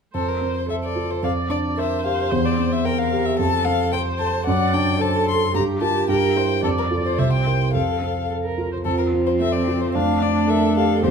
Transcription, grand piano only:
0.14 F2
0.41 C4
0.68 C5
0.96 F4
1.23 F2
1.50 D4
1.77 A#4
2.05 G4
2.32 E2
2.58 C4
2.85 C5
3.12 G4
3.39 F2
3.66 C4
3.93 C5
4.20 A4
4.47 F#2
4.74 D4
5.01 C5
5.28 A4
5.54 G2
5.81 F4 A#4
6.08 G2
6.36 E4 A#4
6.63 F2
6.91 F4 A4
7.18 C2
7.46 E4 A#4
7.74 F2
8.01 C4
8.30 A4
8.58 F4
8.85 F2
9.13 C4
9.41 A4
9.68 F4
9.95 F2
10.22 D4
10.50 A#4
10.77 G4
11.03 E2

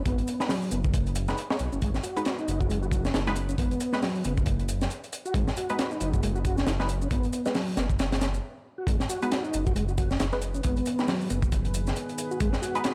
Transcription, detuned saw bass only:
0.06 G#1
0.72 F#1
1.60 B1
1.73 F#1
1.82 G#1
2.48 F#1
3.14 F#1
3.58 G#1
4.25 F#1
5.34 G#1
6.01 F#1
6.67 F#1
7.11 G#1
7.77 F#1
8.87 G#1
9.54 F#1
10.20 F#1
10.65 G#1
11.30 F#1
12.40 G#1

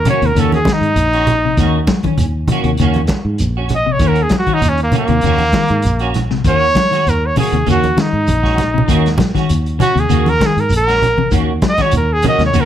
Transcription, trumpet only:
0.10 C#5
0.26 A#4
0.39 A4
0.55 G#4
0.73 D#4
3.75 D#5
3.92 C#5
4.08 A#4
4.23 G#4
4.39 F#4
4.53 D#4
4.69 C#4
4.83 A#3
4.98 A#3
6.48 C#5
7.09 A#4
7.26 C#5
7.39 G#4
7.70 F#4
8.01 D#4
9.82 F#4
9.99 G#4
10.29 A#4
10.46 G#4
10.60 A#4
10.77 A#4
11.69 D#5
11.82 C#5
11.97 A#4
12.13 G#4
12.28 D#5
12.46 C#5
12.61 A#4

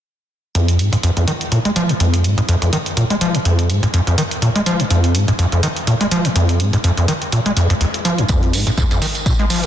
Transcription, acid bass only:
0.55 F2
0.79 G#2
0.93 G#2
1.03 F2
1.17 F2
1.28 D#3
1.52 A#2
1.65 G#3
1.76 F3
1.89 G#2
2.00 F2
2.24 G#2
2.38 G#2
2.49 F2
2.62 F2
2.73 D#3
2.97 A#2
3.10 G#3
3.21 F3
3.35 G#2
3.45 F2
3.70 G#2
3.83 G#2
3.94 F2
4.07 F2
4.18 D#3
4.42 A#2
4.55 G#3
4.66 F3
4.80 G#2
4.91 F2
5.15 G#2
5.28 G#2
5.39 F2
5.52 F2
5.63 D#3
5.87 A#2
6.01 G#3
6.11 F3
6.25 G#2
6.36 F2
6.60 G#2
6.73 G#2
6.84 F2
6.97 F2
7.08 D#3
7.32 A#2
7.46 G#3
7.57 F2
7.70 F2
7.81 D#2
8.05 F3
8.18 F2
8.29 F2
8.53 G#2
8.67 G#2
8.78 F2
8.91 F2
9.02 D#3
9.26 A#2
9.39 G#3
9.50 F3

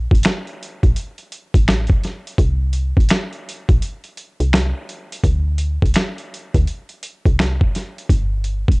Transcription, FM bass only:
0.11 A1
0.83 A#1
1.54 A1
2.39 C2
2.97 A1
3.69 A#1
4.40 C2
5.24 D2
5.82 C2
6.55 D2
7.26 C2
8.10 G1
8.69 F1

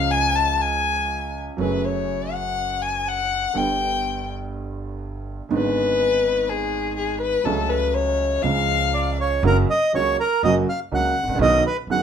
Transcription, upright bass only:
Already playing: C#2
1.58 F#1
3.55 G1
5.51 G#1
7.45 C#2
8.43 C#2
9.43 F#1
9.93 C#2
10.43 F#1
10.92 C#2
11.23 G#1
11.28 A1
11.34 A#1
11.39 B1
11.87 F#1

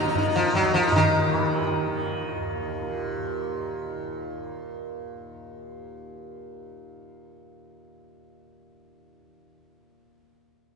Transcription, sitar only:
0.07 D#4
0.18 D#4
0.28 D#4
0.36 F3
0.47 D#4
0.55 F#3
0.65 D#4
0.74 F3
0.87 D#4
0.96 D#3

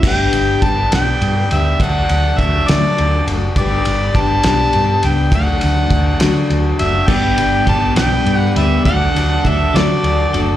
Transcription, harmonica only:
0.07 G5
0.64 A5
0.95 G5
1.52 E5
1.82 F#5
2.38 E5
2.68 D5
3.58 D5
4.17 A5
5.06 G5
5.35 F#5
6.79 E5
7.07 G5
7.68 A5
7.97 G5
8.37 F#5
8.56 E5
8.85 F#5
9.47 E5
9.76 D5

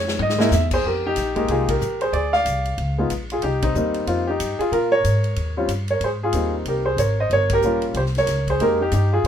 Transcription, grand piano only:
Already playing: C#5
0.22 D#5
0.38 G#3 A#3 D#4 E4
0.54 E5
0.73 G#4 C5
0.86 G4 A#4
1.06 D#4 G4
1.36 G#3 A#3 D#4 G4
1.51 F4 G#4
1.69 G4 A#4
2.02 G#4 C5
2.13 G#4 D5
2.33 D5 F5
2.98 G#3 B3 D#4 F4
3.32 F4 G#4
3.43 D#4 G4
3.63 C4 D#4
3.75 G3 A#3 C4 D#4
4.08 C4 F4
4.27 D#4 G4
4.59 F4 G#4
4.72 F4 A#4
4.92 A#4 C#5
5.57 G3 C4 C#4 F4
5.91 A#4 C#5
6.04 G#4 C5
6.23 F4 G#4
6.34 G3 A#3 C4 D#4
6.68 G4 A#4
6.85 G#4 C5
6.98 A#4 C#5
7.20 C5 D#5
7.33 A#4 C#5
7.53 G4 A#4
7.63 G3 A#3 C#4 F4
7.96 G4 C5
8.18 A#4 C#5
8.50 G#4 C5
8.61 G#3 A#3 D#4 G4 A#4
8.81 D#4 G4
8.93 D#4 G4
9.13 F4 G#4

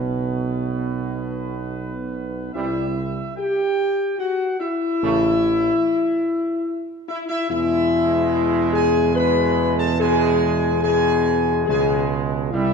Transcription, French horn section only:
Already playing: B3
2.55 E4
3.38 G4
4.19 F#4
4.60 E4
7.09 E4
7.29 E4
7.50 E4
8.73 G#4
9.16 B4
9.79 A4
9.99 G#4
10.83 G#4
11.66 G#4
12.52 E4

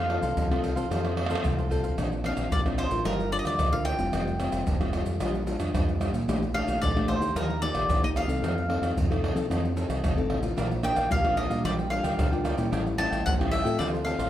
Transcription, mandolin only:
Already playing: F5
2.26 F5
2.52 D5
2.79 C5
3.05 A#4
3.32 D5
3.39 D#5
3.47 D5
3.73 F5
3.85 G5
6.54 F5
6.82 D5
7.08 C5
7.36 A#4
7.62 D5
8.04 D#5
8.17 F5
10.84 G5
11.12 F5
11.37 D#5
11.65 D5
11.90 F5
12.98 A5
13.26 F#5
13.51 E5
13.79 D5
14.05 F5

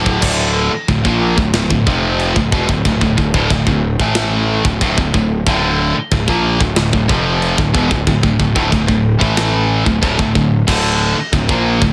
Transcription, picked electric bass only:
Already playing: D1
0.22 D1
0.72 muted picked electric bass stroke
0.88 D1
1.05 A#1
1.37 D1
1.54 D1
1.71 D1
1.86 F1
2.36 D1
2.52 E1
2.69 D1
2.85 D1
3.02 D1
3.18 D1
3.34 D1
3.50 D1
3.67 D1
3.99 A1
4.65 D1
4.81 D1
4.97 D1
5.14 D1
5.47 D1
5.96 muted picked electric bass stroke
6.11 D1
6.28 A#1
6.60 D1
6.77 D1
6.93 D1
7.09 F1
7.58 D1
7.74 E1
7.91 D1
8.07 D1
8.23 D1
8.40 D1
8.56 D1
8.72 D1
8.88 D1
9.21 A1
9.86 D1
10.02 D1
10.19 D1
10.35 D1
10.68 D1
11.15 muted picked electric bass stroke
11.32 D1
11.49 A#1
11.81 D1

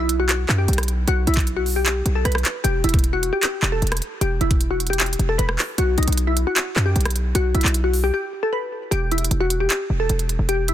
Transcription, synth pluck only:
0.00 E4
0.20 F#4
0.29 F#4
0.58 G4
1.08 F#4
1.27 E4
1.57 F#4
1.76 G4
1.86 G4
2.15 A4
2.25 B4
2.64 G4
2.84 E4
3.13 F#4
3.33 G4
3.43 G4
3.72 A4
4.21 G4
4.41 E4
4.71 F#4
4.90 G4
5.00 G4
5.29 A4
5.38 B4
5.78 F#4
5.98 D#4
6.27 E4
6.47 F#4
6.56 F#4
6.86 G4
7.35 F#4
7.55 E4
7.84 F#4
8.04 G4
8.14 G4
8.43 A4
8.53 B4
8.91 G4
9.12 E4
9.40 F#4
9.60 G4
9.71 G4
10.00 A4
10.49 G4
10.69 E4

